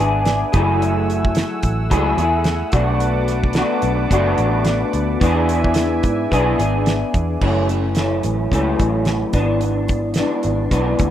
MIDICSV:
0, 0, Header, 1, 5, 480
1, 0, Start_track
1, 0, Key_signature, 3, "minor"
1, 0, Tempo, 550206
1, 708, Time_signature, 4, 2, 24, 8
1, 9688, End_track
2, 0, Start_track
2, 0, Title_t, "Analog synth pad"
2, 0, Program_c, 0, 89
2, 0, Note_on_c, 0, 71, 71
2, 0, Note_on_c, 0, 76, 73
2, 0, Note_on_c, 0, 80, 70
2, 0, Note_on_c, 0, 86, 94
2, 435, Note_off_c, 0, 71, 0
2, 456, Note_off_c, 0, 76, 0
2, 456, Note_off_c, 0, 86, 0
2, 469, Note_on_c, 0, 57, 64
2, 469, Note_on_c, 0, 78, 69
2, 471, Note_on_c, 0, 88, 81
2, 2355, Note_off_c, 0, 80, 0
2, 2369, Note_off_c, 0, 57, 0
2, 2370, Note_off_c, 0, 88, 0
2, 2375, Note_on_c, 0, 86, 81
2, 2380, Note_on_c, 0, 71, 75
2, 2384, Note_on_c, 0, 81, 67
2, 4513, Note_off_c, 0, 78, 0
2, 4524, Note_off_c, 0, 81, 0
2, 4537, Note_on_c, 0, 76, 70
2, 4537, Note_on_c, 0, 80, 67
2, 6426, Note_off_c, 0, 86, 0
2, 6429, Note_off_c, 0, 71, 0
2, 6443, Note_off_c, 0, 76, 0
2, 6443, Note_off_c, 0, 80, 0
2, 9688, End_track
3, 0, Start_track
3, 0, Title_t, "Clean electric guitar"
3, 0, Program_c, 1, 27
3, 0, Note_on_c, 1, 62, 54
3, 0, Note_on_c, 1, 68, 51
3, 1, Note_on_c, 1, 59, 44
3, 453, Note_off_c, 1, 68, 0
3, 456, Note_on_c, 1, 68, 71
3, 464, Note_off_c, 1, 62, 0
3, 467, Note_on_c, 1, 64, 72
3, 474, Note_off_c, 1, 59, 0
3, 478, Note_on_c, 1, 57, 66
3, 484, Note_on_c, 1, 54, 54
3, 1655, Note_off_c, 1, 54, 0
3, 1658, Note_on_c, 1, 54, 84
3, 1659, Note_off_c, 1, 64, 0
3, 1660, Note_off_c, 1, 57, 0
3, 1662, Note_off_c, 1, 68, 0
3, 1664, Note_on_c, 1, 57, 91
3, 1670, Note_on_c, 1, 64, 83
3, 1673, Note_on_c, 1, 68, 92
3, 1890, Note_off_c, 1, 68, 0
3, 1900, Note_on_c, 1, 68, 57
3, 1901, Note_off_c, 1, 64, 0
3, 1903, Note_off_c, 1, 54, 0
3, 1906, Note_off_c, 1, 57, 0
3, 1912, Note_on_c, 1, 64, 54
3, 1924, Note_on_c, 1, 57, 47
3, 2377, Note_off_c, 1, 68, 0
3, 2381, Note_off_c, 1, 64, 0
3, 2381, Note_on_c, 1, 66, 73
3, 2385, Note_on_c, 1, 62, 64
3, 2386, Note_off_c, 1, 57, 0
3, 2390, Note_on_c, 1, 57, 61
3, 2394, Note_on_c, 1, 47, 52
3, 3088, Note_off_c, 1, 47, 0
3, 3098, Note_off_c, 1, 57, 0
3, 3098, Note_on_c, 1, 47, 63
3, 3104, Note_off_c, 1, 66, 0
3, 3109, Note_on_c, 1, 57, 58
3, 3110, Note_off_c, 1, 62, 0
3, 3114, Note_on_c, 1, 62, 66
3, 3120, Note_on_c, 1, 66, 63
3, 3564, Note_off_c, 1, 47, 0
3, 3574, Note_on_c, 1, 47, 86
3, 3579, Note_off_c, 1, 57, 0
3, 3589, Note_on_c, 1, 57, 93
3, 3590, Note_off_c, 1, 62, 0
3, 3594, Note_off_c, 1, 66, 0
3, 3594, Note_on_c, 1, 62, 95
3, 3604, Note_on_c, 1, 66, 95
3, 4536, Note_on_c, 1, 52, 88
3, 4540, Note_off_c, 1, 57, 0
3, 4541, Note_off_c, 1, 47, 0
3, 4543, Note_on_c, 1, 59, 85
3, 4550, Note_off_c, 1, 62, 0
3, 4553, Note_on_c, 1, 62, 87
3, 4556, Note_off_c, 1, 66, 0
3, 4562, Note_on_c, 1, 68, 95
3, 5502, Note_off_c, 1, 52, 0
3, 5502, Note_off_c, 1, 59, 0
3, 5506, Note_off_c, 1, 62, 0
3, 5506, Note_on_c, 1, 52, 87
3, 5510, Note_off_c, 1, 68, 0
3, 5513, Note_on_c, 1, 59, 83
3, 5517, Note_on_c, 1, 62, 85
3, 5521, Note_on_c, 1, 68, 98
3, 5731, Note_off_c, 1, 68, 0
3, 5741, Note_on_c, 1, 68, 57
3, 5744, Note_off_c, 1, 62, 0
3, 5747, Note_off_c, 1, 52, 0
3, 5750, Note_off_c, 1, 59, 0
3, 5754, Note_on_c, 1, 62, 45
3, 5761, Note_on_c, 1, 59, 49
3, 6464, Note_off_c, 1, 68, 0
3, 6468, Note_on_c, 1, 42, 82
3, 6471, Note_off_c, 1, 62, 0
3, 6471, Note_on_c, 1, 52, 82
3, 6473, Note_off_c, 1, 59, 0
3, 6477, Note_on_c, 1, 57, 78
3, 6479, Note_on_c, 1, 61, 94
3, 6697, Note_off_c, 1, 61, 0
3, 6707, Note_off_c, 1, 57, 0
3, 6708, Note_off_c, 1, 42, 0
3, 6708, Note_on_c, 1, 61, 48
3, 6709, Note_off_c, 1, 52, 0
3, 6717, Note_on_c, 1, 57, 45
3, 6728, Note_on_c, 1, 52, 39
3, 6947, Note_off_c, 1, 52, 0
3, 6948, Note_off_c, 1, 61, 0
3, 6949, Note_on_c, 1, 42, 59
3, 6952, Note_off_c, 1, 57, 0
3, 6957, Note_on_c, 1, 52, 60
3, 6962, Note_on_c, 1, 57, 55
3, 6969, Note_on_c, 1, 61, 54
3, 7418, Note_off_c, 1, 42, 0
3, 7426, Note_off_c, 1, 57, 0
3, 7428, Note_on_c, 1, 42, 83
3, 7431, Note_off_c, 1, 52, 0
3, 7435, Note_off_c, 1, 61, 0
3, 7435, Note_on_c, 1, 52, 87
3, 7437, Note_on_c, 1, 57, 83
3, 7446, Note_on_c, 1, 61, 95
3, 8141, Note_off_c, 1, 61, 0
3, 8144, Note_on_c, 1, 62, 73
3, 8148, Note_off_c, 1, 42, 0
3, 8148, Note_off_c, 1, 57, 0
3, 8149, Note_off_c, 1, 52, 0
3, 8151, Note_on_c, 1, 59, 60
3, 8153, Note_on_c, 1, 52, 57
3, 8155, Note_on_c, 1, 44, 52
3, 8858, Note_off_c, 1, 44, 0
3, 8865, Note_off_c, 1, 59, 0
3, 8866, Note_off_c, 1, 62, 0
3, 8868, Note_off_c, 1, 52, 0
3, 8868, Note_on_c, 1, 44, 52
3, 8872, Note_on_c, 1, 52, 56
3, 8875, Note_on_c, 1, 59, 53
3, 8883, Note_on_c, 1, 62, 64
3, 9334, Note_off_c, 1, 44, 0
3, 9341, Note_off_c, 1, 52, 0
3, 9342, Note_off_c, 1, 59, 0
3, 9344, Note_on_c, 1, 44, 83
3, 9345, Note_on_c, 1, 52, 80
3, 9346, Note_off_c, 1, 62, 0
3, 9353, Note_on_c, 1, 59, 85
3, 9357, Note_on_c, 1, 62, 77
3, 9688, Note_off_c, 1, 44, 0
3, 9688, Note_off_c, 1, 52, 0
3, 9688, Note_off_c, 1, 59, 0
3, 9688, Note_off_c, 1, 62, 0
3, 9688, End_track
4, 0, Start_track
4, 0, Title_t, "Picked electric bass"
4, 0, Program_c, 2, 34
4, 0, Note_on_c, 2, 32, 79
4, 375, Note_off_c, 2, 32, 0
4, 470, Note_on_c, 2, 30, 100
4, 1237, Note_off_c, 2, 30, 0
4, 1424, Note_on_c, 2, 33, 83
4, 1666, Note_off_c, 2, 33, 0
4, 1666, Note_on_c, 2, 37, 92
4, 1859, Note_off_c, 2, 37, 0
4, 1897, Note_on_c, 2, 40, 85
4, 2285, Note_off_c, 2, 40, 0
4, 2381, Note_on_c, 2, 35, 107
4, 3152, Note_off_c, 2, 35, 0
4, 3340, Note_on_c, 2, 35, 79
4, 3535, Note_off_c, 2, 35, 0
4, 3585, Note_on_c, 2, 30, 80
4, 3778, Note_off_c, 2, 30, 0
4, 3826, Note_on_c, 2, 33, 75
4, 4211, Note_off_c, 2, 33, 0
4, 4307, Note_on_c, 2, 38, 85
4, 4499, Note_off_c, 2, 38, 0
4, 4548, Note_on_c, 2, 40, 98
4, 5233, Note_off_c, 2, 40, 0
4, 5266, Note_on_c, 2, 44, 68
4, 5459, Note_off_c, 2, 44, 0
4, 5509, Note_on_c, 2, 35, 86
4, 5700, Note_off_c, 2, 35, 0
4, 5747, Note_on_c, 2, 32, 78
4, 6131, Note_off_c, 2, 32, 0
4, 6229, Note_on_c, 2, 40, 95
4, 6421, Note_off_c, 2, 40, 0
4, 6467, Note_on_c, 2, 30, 93
4, 7152, Note_off_c, 2, 30, 0
4, 7193, Note_on_c, 2, 33, 74
4, 7383, Note_off_c, 2, 33, 0
4, 7432, Note_on_c, 2, 37, 79
4, 7622, Note_off_c, 2, 37, 0
4, 7675, Note_on_c, 2, 33, 73
4, 8056, Note_off_c, 2, 33, 0
4, 8140, Note_on_c, 2, 32, 92
4, 8911, Note_off_c, 2, 32, 0
4, 9114, Note_on_c, 2, 32, 73
4, 9303, Note_off_c, 2, 32, 0
4, 9346, Note_on_c, 2, 35, 86
4, 9539, Note_off_c, 2, 35, 0
4, 9595, Note_on_c, 2, 38, 79
4, 9688, Note_off_c, 2, 38, 0
4, 9688, End_track
5, 0, Start_track
5, 0, Title_t, "Drums"
5, 222, Note_on_c, 9, 42, 76
5, 230, Note_on_c, 9, 38, 105
5, 309, Note_off_c, 9, 42, 0
5, 317, Note_off_c, 9, 38, 0
5, 464, Note_on_c, 9, 42, 66
5, 470, Note_on_c, 9, 36, 102
5, 551, Note_off_c, 9, 42, 0
5, 557, Note_off_c, 9, 36, 0
5, 717, Note_on_c, 9, 42, 78
5, 804, Note_off_c, 9, 42, 0
5, 958, Note_on_c, 9, 42, 73
5, 1045, Note_off_c, 9, 42, 0
5, 1087, Note_on_c, 9, 36, 94
5, 1175, Note_off_c, 9, 36, 0
5, 1176, Note_on_c, 9, 42, 88
5, 1193, Note_on_c, 9, 38, 127
5, 1264, Note_off_c, 9, 42, 0
5, 1280, Note_off_c, 9, 38, 0
5, 1419, Note_on_c, 9, 42, 78
5, 1425, Note_on_c, 9, 36, 88
5, 1506, Note_off_c, 9, 42, 0
5, 1512, Note_off_c, 9, 36, 0
5, 1667, Note_on_c, 9, 42, 85
5, 1668, Note_on_c, 9, 36, 86
5, 1754, Note_off_c, 9, 42, 0
5, 1755, Note_off_c, 9, 36, 0
5, 1902, Note_on_c, 9, 42, 74
5, 1990, Note_off_c, 9, 42, 0
5, 2132, Note_on_c, 9, 42, 74
5, 2140, Note_on_c, 9, 38, 100
5, 2219, Note_off_c, 9, 42, 0
5, 2227, Note_off_c, 9, 38, 0
5, 2371, Note_on_c, 9, 42, 77
5, 2382, Note_on_c, 9, 36, 112
5, 2458, Note_off_c, 9, 42, 0
5, 2470, Note_off_c, 9, 36, 0
5, 2620, Note_on_c, 9, 42, 78
5, 2707, Note_off_c, 9, 42, 0
5, 2861, Note_on_c, 9, 42, 64
5, 2867, Note_on_c, 9, 38, 36
5, 2948, Note_off_c, 9, 42, 0
5, 2954, Note_off_c, 9, 38, 0
5, 2997, Note_on_c, 9, 36, 81
5, 3081, Note_on_c, 9, 42, 83
5, 3084, Note_off_c, 9, 36, 0
5, 3097, Note_on_c, 9, 38, 120
5, 3168, Note_off_c, 9, 42, 0
5, 3185, Note_off_c, 9, 38, 0
5, 3332, Note_on_c, 9, 42, 67
5, 3419, Note_off_c, 9, 42, 0
5, 3584, Note_on_c, 9, 36, 84
5, 3588, Note_on_c, 9, 42, 101
5, 3671, Note_off_c, 9, 36, 0
5, 3675, Note_off_c, 9, 42, 0
5, 3819, Note_on_c, 9, 42, 75
5, 3906, Note_off_c, 9, 42, 0
5, 4053, Note_on_c, 9, 42, 80
5, 4061, Note_on_c, 9, 38, 95
5, 4141, Note_off_c, 9, 42, 0
5, 4148, Note_off_c, 9, 38, 0
5, 4304, Note_on_c, 9, 42, 74
5, 4391, Note_off_c, 9, 42, 0
5, 4548, Note_on_c, 9, 36, 103
5, 4551, Note_on_c, 9, 42, 78
5, 4635, Note_off_c, 9, 36, 0
5, 4638, Note_off_c, 9, 42, 0
5, 4788, Note_on_c, 9, 42, 68
5, 4875, Note_off_c, 9, 42, 0
5, 4924, Note_on_c, 9, 36, 80
5, 5008, Note_on_c, 9, 42, 92
5, 5011, Note_off_c, 9, 36, 0
5, 5025, Note_on_c, 9, 38, 109
5, 5096, Note_off_c, 9, 42, 0
5, 5112, Note_off_c, 9, 38, 0
5, 5263, Note_on_c, 9, 42, 71
5, 5267, Note_on_c, 9, 36, 92
5, 5350, Note_off_c, 9, 42, 0
5, 5354, Note_off_c, 9, 36, 0
5, 5511, Note_on_c, 9, 36, 81
5, 5521, Note_on_c, 9, 42, 84
5, 5598, Note_off_c, 9, 36, 0
5, 5608, Note_off_c, 9, 42, 0
5, 5754, Note_on_c, 9, 42, 85
5, 5841, Note_off_c, 9, 42, 0
5, 5986, Note_on_c, 9, 42, 74
5, 5993, Note_on_c, 9, 38, 107
5, 6073, Note_off_c, 9, 42, 0
5, 6081, Note_off_c, 9, 38, 0
5, 6229, Note_on_c, 9, 42, 72
5, 6231, Note_on_c, 9, 36, 94
5, 6316, Note_off_c, 9, 42, 0
5, 6318, Note_off_c, 9, 36, 0
5, 6468, Note_on_c, 9, 49, 87
5, 6469, Note_on_c, 9, 36, 102
5, 6555, Note_off_c, 9, 49, 0
5, 6556, Note_off_c, 9, 36, 0
5, 6710, Note_on_c, 9, 42, 63
5, 6797, Note_off_c, 9, 42, 0
5, 6934, Note_on_c, 9, 42, 81
5, 6950, Note_on_c, 9, 38, 110
5, 7021, Note_off_c, 9, 42, 0
5, 7037, Note_off_c, 9, 38, 0
5, 7183, Note_on_c, 9, 42, 75
5, 7270, Note_off_c, 9, 42, 0
5, 7429, Note_on_c, 9, 36, 75
5, 7440, Note_on_c, 9, 42, 83
5, 7517, Note_off_c, 9, 36, 0
5, 7527, Note_off_c, 9, 42, 0
5, 7672, Note_on_c, 9, 42, 72
5, 7674, Note_on_c, 9, 36, 90
5, 7759, Note_off_c, 9, 42, 0
5, 7761, Note_off_c, 9, 36, 0
5, 7897, Note_on_c, 9, 42, 65
5, 7905, Note_on_c, 9, 38, 97
5, 7984, Note_off_c, 9, 42, 0
5, 7992, Note_off_c, 9, 38, 0
5, 8139, Note_on_c, 9, 42, 67
5, 8144, Note_on_c, 9, 36, 98
5, 8227, Note_off_c, 9, 42, 0
5, 8231, Note_off_c, 9, 36, 0
5, 8382, Note_on_c, 9, 42, 67
5, 8469, Note_off_c, 9, 42, 0
5, 8622, Note_on_c, 9, 42, 62
5, 8631, Note_on_c, 9, 36, 92
5, 8709, Note_off_c, 9, 42, 0
5, 8718, Note_off_c, 9, 36, 0
5, 8845, Note_on_c, 9, 42, 92
5, 8861, Note_on_c, 9, 38, 116
5, 8932, Note_off_c, 9, 42, 0
5, 8949, Note_off_c, 9, 38, 0
5, 9098, Note_on_c, 9, 42, 74
5, 9185, Note_off_c, 9, 42, 0
5, 9346, Note_on_c, 9, 36, 88
5, 9349, Note_on_c, 9, 42, 83
5, 9433, Note_off_c, 9, 36, 0
5, 9436, Note_off_c, 9, 42, 0
5, 9586, Note_on_c, 9, 42, 77
5, 9593, Note_on_c, 9, 36, 94
5, 9673, Note_off_c, 9, 42, 0
5, 9680, Note_off_c, 9, 36, 0
5, 9688, End_track
0, 0, End_of_file